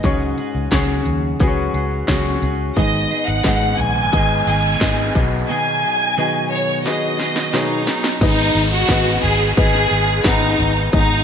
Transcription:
0.03 fingered electric bass C#2, grand piano G#2 C#4 F#4 G#4 C#5, clean electric guitar C#3 F#3 C#4 F#4 G#4, kick, closed hi-hat
0.38 clean electric guitar C#4 F#4 G#4, closed hi-hat
0.55 fingered electric bass C#2
0.72 fingered electric bass C#2, clean electric guitar C#3 F#3 C#4 F#4 G#4, grand piano C#4 F#4 G#4 C#5, kick, snare, closed hi-hat
1.05 fingered electric bass D#2, closed hi-hat, floor tom
1.40 fingered electric bass C#2, clean electric guitar F#3 C#4 F#4 G#4, grand piano C#4 F#4 G#4 B4, kick, closed hi-hat
1.48 grand piano C#5
1.74 fingered electric bass C#2, clean electric guitar C#4 F#4 G#4, closed hi-hat
2.08 fingered electric bass C#2, clean electric guitar C#3 F#3 C#4 F#4 G#4, grand piano C#4 F#4 G#4 C#5, kick, snare, closed hi-hat
2.42 fingered electric bass C#2, clean electric guitar C#4 F#4 G#4, closed hi-hat, floor tom
2.76 fingered electric bass G#1, grand piano G#2 D#3 D#4 G#4 B4 D#5, clean electric guitar G#2 D#3 G#3 B3 D#4 G#4, violin section D#5, kick, closed hi-hat, noise sweep
3.11 clean electric guitar G#3 B3 D#4 G#4, closed hi-hat
3.27 fingered electric bass G#1, violin section F#5
3.44 fingered electric bass G#1, clean electric guitar G#2 D#3 G#3 B3 D#4 G#4, grand piano D#4 G#4 B4 D#5, kick, snare, closed hi-hat
3.79 fingered electric bass A#1, violin section G#5, closed hi-hat, floor tom
4.13 fingered electric bass G#1, clean electric guitar G#3 B3 D#4 G#4, grand piano D#4 G#4 B4 D#5, kick, closed hi-hat
4.47 fingered electric bass G#1, clean electric guitar G#3 B3 D#4 G#4, violin section G#5, closed hi-hat
4.81 fingered electric bass G#1, clean electric guitar G#2 D#3 G#3 B3 D#4 G#4, grand piano D#4 G#4 B4 D#5, kick, snare, closed hi-hat
5.15 fingered electric bass B1, grand piano B2 F#3 F#4 G#4 B4 D#5, clean electric guitar F#3 B3 D#4 G#4, kick, closed hi-hat, floor tom
5.49 clean electric guitar B2 D#3 F#3 B3 D#4 G#4, violin section G#5
5.83 clean electric guitar F#3 B3 D#4 G#4
6.17 clean electric guitar B2 D#3 F#3 B3 D#4 G#4, grand piano F#4 G#4 B4 D#5
6.53 violin section C#5
6.84 clean electric guitar F#3 B3 D#4 G#4, grand piano F#4 G#4 B4 D#5, violin section D#5, snare
7.19 clean electric guitar F#3 B3 D#4 G#4, snare
7.36 snare
7.53 clean electric guitar B2 D#3 F#3 B3 D#4 G#4, violin section D#4, grand piano F#4 G#4 B4 C#5, snare
7.87 clean electric guitar F#3 B3 D#4 G#4, snare
8.04 snare
8.21 fingered electric bass G#1, grand piano G#2 D#3 B3 D#4 G#4 B4 D#5, violin section D#4, kick, closed hi-hat, crash, downlifter
8.55 fingered electric bass G#1, closed hi-hat
8.72 violin section F#4, closed hi-hat
8.88 fingered electric bass G#1, grand piano B3 D#4 G#4 B4 D#5, kick, snare, closed hi-hat
9.22 fingered electric bass G#1, violin section G#4, closed hi-hat, floor tom
9.57 fingered electric bass G#1, grand piano B3 D#4 G#4 B4 D#5, violin section G#4, kick, closed hi-hat
9.74 snare
9.91 fingered electric bass G#1, closed hi-hat
10.24 fingered electric bass G#1, grand piano B3 D#4 G#4 B4 F#5, violin section D#4, kick, snare, closed hi-hat
10.59 fingered electric bass G#1, closed hi-hat, floor tom
10.93 fingered electric bass G#1, grand piano G#2 D#3 B3 D#4 G#4 B4 D#5, violin section D#4, kick, closed hi-hat

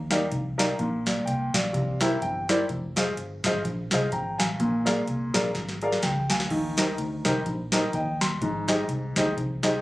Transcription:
Already playing: fingered electric bass D#2
0.10 upright piano D#4 G4 A#4 D5 F5, snare, closed hi-hat
0.32 fingered electric bass C2, kick, closed hi-hat
0.58 upright piano D#4 G4 A#4 D5 F5, snare, closed hi-hat
0.79 fingered electric bass A#1, upright piano A#2, kick, closed hi-hat
1.06 upright piano D5 F5, snare, closed hi-hat
1.25 fingered electric bass C2, upright piano G5, closed hi-hat
1.54 fingered electric bass A#1, upright piano D5 F5, kick, snare, closed hi-hat
1.73 fingered electric bass C2, upright piano C3, kick, closed hi-hat
2.01 upright piano E4 G4 A#4 C5 E5, snare, closed hi-hat
2.22 fingered electric bass G1, upright piano G5, kick, closed hi-hat
2.49 upright piano E4 G4 A#4 C5 D5 A#5, snare, closed hi-hat
2.69 fingered electric bass F1, kick, closed hi-hat
2.96 upright piano F4 G#4 C5 D#5 F5, snare, closed hi-hat
3.17 fingered electric bass G1, closed hi-hat
3.44 fingered electric bass G#1, upright piano F4 G#4 C5 D#5 F5, kick, snare, closed hi-hat
3.65 fingered electric bass A#1, kick, closed hi-hat
3.91 fingered electric bass C2, upright piano F4 G#4 C5 D#5 F5, snare, closed hi-hat
4.12 fingered electric bass G#1, upright piano G5 A#5, kick, closed hi-hat
4.38 fingered electric bass A1, upright piano F5 G#5, snare, closed hi-hat
4.60 fingered electric bass A#1, upright piano A#2, kick, closed hi-hat
4.85 upright piano F4 G#4 A#4 D5 F5, snare, closed hi-hat
5.08 fingered electric bass C2, closed hi-hat
5.34 fingered electric bass A#1, upright piano F4 G#4 A#4 D5 F5, kick, snare, closed hi-hat
5.55 fingered electric bass G#1, kick, snare, closed hi-hat
5.69 snare
5.82 upright piano F4 G#4 A#4 D5 F5, closed hi-hat
5.92 snare
6.02 fingered electric bass C#2, upright piano G5, kick, snare, closed hi-hat
6.30 fingered electric bass D2, upright piano F5 G#5, snare, closed hi-hat
6.40 snare
6.50 fingered electric bass D#2, upright piano D#3, kick, crash
6.77 upright piano D#4 G4 A#4 C5 D#5, snare, closed hi-hat
6.98 fingered electric bass D2, closed hi-hat
7.25 fingered electric bass C2, upright piano D#4 G4 A#4 C5 D#5, kick, snare, closed hi-hat
7.46 fingered electric bass A#1, kick, closed hi-hat
7.72 upright piano D#4 G4 A#4 C5 D#5, snare, closed hi-hat
7.93 fingered electric bass D#2, upright piano D#5 G5, kick, closed hi-hat
8.21 upright piano C6, snare, closed hi-hat
8.41 fingered electric bass G#1, upright piano G#2, kick, closed hi-hat
8.68 upright piano D#4 G4 G#4 C5 D#5, snare, closed hi-hat
8.88 fingered electric bass C2, closed hi-hat
9.16 fingered electric bass D2, upright piano D#4 G4 G#4 C5 D#5, kick, snare, closed hi-hat
9.37 fingered electric bass C2, kick, closed hi-hat
9.63 upright piano D#4 G4 G#4 C5 D#5, snare, closed hi-hat

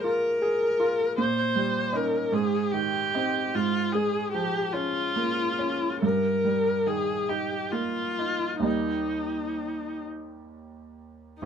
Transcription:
Already playing: grand piano A#2 F3 G#3
0.04 grand piano F4, viola A#4
0.42 grand piano G#4
0.80 grand piano F4
1.18 grand piano A#2, viola C5
1.56 grand piano G3
1.93 grand piano C#4 D#4, viola A#4
2.32 grand piano G#2, viola G#4
2.72 grand piano D#3, viola G4
3.15 grand piano C4 D#4
3.54 grand piano G#2, viola F4
3.92 grand piano G#3, viola G#4
4.32 grand piano F3, viola G4
4.73 grand piano C#4, viola F4
5.16 grand piano A#3
5.59 grand piano C#4
6.02 grand piano G2, viola A#4
6.45 grand piano G3
6.87 grand piano D#3, viola G#4
7.29 grand piano D#4, viola G4
7.71 grand piano A#3, viola F4
8.19 grand piano D#4
8.60 grand piano D#2 G3 A#3 D#4, viola D#4
11.41 grand piano G#1, viola D#4

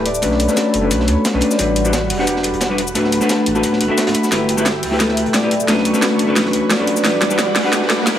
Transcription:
Already playing: sub bass D1, harp E4 G4 A4 B4, analog synth pad G4 B4 E5 A5
0.06 harp D5, closed hi-hat
0.15 cabasa
0.22 sub bass B1, hollow-body jazz guitar A3 C#4 D4 B4, harp F#4, analog synth pad A4 C#5 B5, kick, closed hi-hat, cabasa
0.31 snare
0.40 closed hi-hat, cabasa
0.48 hollow-body jazz guitar A3 C#4 D4 B4, snare, cabasa
0.56 harp A4, kick, snare, closed hi-hat, cabasa
0.74 sub bass F#1, closed hi-hat
0.81 hollow-body jazz guitar A3 C#4 D4 B4
0.91 sub bass B1, harp B4, kick, closed hi-hat, cabasa
1.00 snare
1.08 sub bass D2, harp C#5, closed hi-hat
1.25 kick, snare, closed hi-hat, cabasa
1.33 sub bass B1, hollow-body jazz guitar A3 C#4 D4 B4
1.41 harp D5, closed hi-hat
1.51 snare, cabasa
1.58 sub bass A1, hollow-body jazz guitar G3 D4 F#4 B4, analog synth pad G3 F#5 B5, harp E4, kick, closed hi-hat, cabasa
1.76 closed hi-hat, cabasa
1.84 hollow-body jazz guitar G3 D4 F#4 B4, cabasa
1.93 harp F#4, kick, snare, closed hi-hat, cabasa
2.10 sub bass E1, closed hi-hat, open hi-hat
2.18 hollow-body jazz guitar G3 D4 B4 F#5, snare
2.27 harp G4, kick, closed hi-hat, cabasa
2.36 snare
2.43 harp A4, closed hi-hat
2.53 sub bass E1, closed hi-hat
2.61 kick, snare, closed hi-hat, cabasa
2.70 hollow-body jazz guitar G3 D4 F#4 B4
2.78 harp B4, closed hi-hat
2.87 cabasa
2.95 sub bass D1, hollow-body jazz guitar A3 D4 F#4 B4, harp F#4, analog synth pad A4, kick, closed hi-hat, cabasa
3.04 snare
3.12 closed hi-hat, cabasa
3.21 hollow-body jazz guitar A3 D4 F#4 B4, snare, cabasa
3.29 harp A4, kick, snare, closed hi-hat, cabasa
3.46 sub bass A1, closed hi-hat
3.55 hollow-body jazz guitar A3 D4 F#4 B4, cabasa
3.63 sub bass D1, harp B4, kick, closed hi-hat, cabasa
3.73 snare
3.81 sub bass F#1, harp B4, closed hi-hat
3.88 hollow-body jazz guitar A3 D4 F#4 E5
3.98 harp F#4, kick, snare, closed hi-hat, cabasa
4.07 sub bass D1, snare, closed hi-hat
4.14 harp B4, closed hi-hat, cabasa
4.23 snare, cabasa
4.31 sub bass G1, hollow-body jazz guitar A3 E4 G4 B4, harp E4, analog synth pad E5 G5, kick, snare, closed hi-hat, riser, cabasa
4.49 closed hi-hat, cabasa
4.57 hollow-body jazz guitar A3 E4 G4 B4, cabasa
4.65 harp G4, kick, snare, closed hi-hat, cabasa
4.83 sub bass D2, closed hi-hat, open hi-hat
4.91 hollow-body jazz guitar A3 E4 G4 B4, snare
5.00 harp A4, kick, snare, closed hi-hat, cabasa
5.09 snare
5.17 harp B4, closed hi-hat
5.26 sub bass D1, closed hi-hat
5.33 harp D5, kick, snare, closed hi-hat, cabasa
5.42 hollow-body jazz guitar A3 E4 G4 B4
5.51 closed hi-hat
5.60 cabasa
5.67 sub bass B1, hollow-body jazz guitar A3 C#4 D4 B4, harp F#4, analog synth pad B5 C#6, kick, snare, closed hi-hat, cabasa
5.78 snare
5.85 closed hi-hat, cabasa
5.93 hollow-body jazz guitar A3 C#4 D4 B4, snare, cabasa
6.02 harp A4, kick, snare, closed hi-hat, cabasa
6.19 sub bass F#1, closed hi-hat
6.27 hollow-body jazz guitar A3 C#4 D4 B4
6.36 sub bass B1, harp B4, kick, snare, closed hi-hat, cabasa
6.46 snare
6.53 sub bass D2, harp C#5, closed hi-hat
6.70 harp D5, kick, snare, closed hi-hat, cabasa
6.79 sub bass B1, hollow-body jazz guitar A3 C#4 D4 B4
6.87 closed hi-hat
6.96 snare, cabasa
7.04 sub bass A1, hollow-body jazz guitar G3 D4 F#4 B4, analog synth pad G3 F#5 B5 D6, harp E4, kick, snare, closed hi-hat, cabasa
7.21 snare, closed hi-hat, cabasa
7.30 hollow-body jazz guitar G3 D4 F#4 B4, cabasa
7.39 harp F#4, kick, snare, closed hi-hat, cabasa
7.55 sub bass E1, snare, closed hi-hat, open hi-hat
7.63 hollow-body jazz guitar G3 D4 B4 F#5, snare
7.73 harp G4, kick, snare, closed hi-hat, cabasa
7.82 snare
7.90 harp A4, snare, closed hi-hat
7.99 sub bass E1
8.06 harp B4, kick, snare, closed hi-hat, open hi-hat, cabasa
8.15 hollow-body jazz guitar G3 D4

